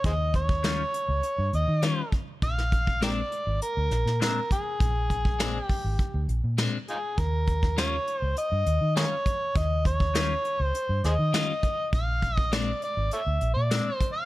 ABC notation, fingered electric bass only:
X:1
M:4/4
L:1/16
Q:1/4=101
K:Eb
V:1 name="Fingered electric bass" clef=bass
E,,6- E,, _D,, z G,, E,, E,2 z3 | B,,,6- B,,, A,,, z D,, B,,, B,,2 z3 | B,,,6- B,,, A,,, z D,, B,,, B,,2 z3 | E,,6- E,, _D,, z G,, E,, E,2 z3 |
E,,6- E,, _D,, z G,, E,, E,2 z3 | B,,,6- B,,, A,,, z D,, B,,, B,,2 z3 |]